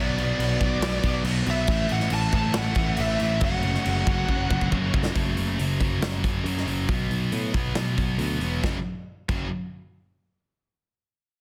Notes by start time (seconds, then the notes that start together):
Already playing: B1 B3 F#4 D5
0.00 B2 F#3 B3
0.18 B2 F#3 B3, crash
0.39 B1 B2 F#3 B3, crash
0.61 B1 B2 F#3 B3, kick, crash
0.80 B1 B2 F#3 B3, snare, crash
1.03 B1 B2 F#3 B3, kick, crash
1.23 B1 B2 F#3 B3, crash
1.46 B1 B2 F#3 B3 E5, crash
1.67 A1 A2 E3 A3 E4 B4, kick, crash
1.89 A1 A2 E3 A3 F#5, crash
2.00 snare
2.10 A1 A2 E3 A3, crash
2.14 A5
2.32 A1 A2 E3 A3 A5, kick, crash
2.54 A1 A2 E3 A3, snare, crash
2.58 F#5
2.75 A1 A2 E3 A3, kick, crash
2.97 A1 A2 E3 A3 E5, crash
3.19 A1 A2 E3 A3, crash
3.40 F#1 F#2 C#3 F#3 C#4 F#4 F#5, kick, crash
3.61 F#2 C#3 F#3, crash
3.74 snare
3.83 F#1 F#2 C#3 F#3, crash
4.05 F#1 F#2 C#3 F#3, kick, crash
4.28 F#1 F#2 C#3 F#3, kick
4.49 F#1 F#2 C#3 F#3, kick
4.61 kick
4.71 F#1 F#2 C#3 F#3, kick
4.94 F#1 F#2 C#3 F#3, kick
5.05 snare
5.14 F#1 F#2 C#3 F#3, kick, open hi-hat
5.37 F#1, open hi-hat
5.59 F#1 F#2 C#3 F#3, open hi-hat
5.79 F#1 F#2 C#3 F#3, kick, open hi-hat
6.01 F#1 F#2 C#3 F#3, snare, open hi-hat
6.24 kick, open hi-hat
6.44 F#2 C#3 F#3, open hi-hat
6.57 snare
6.66 F#1 F#2 C#3 F#3, open hi-hat
6.89 B1 B2 F#3 B3, kick, open hi-hat
7.11 B1, open hi-hat
7.31 A2 B2 F#3 B3, open hi-hat
7.54 B1 B2 F#3 B3, kick, open hi-hat
7.75 B1 B2 F#3 B3, snare, open hi-hat
7.97 B1, kick, open hi-hat
8.18 D2 B2 F#3 B3, open hi-hat
8.40 E1 B2 F#3 B3, open hi-hat
8.62 F#1 F#2 C#3 F#3, kick, snare
9.29 F#1 F#2 C#3 F#3, kick, crash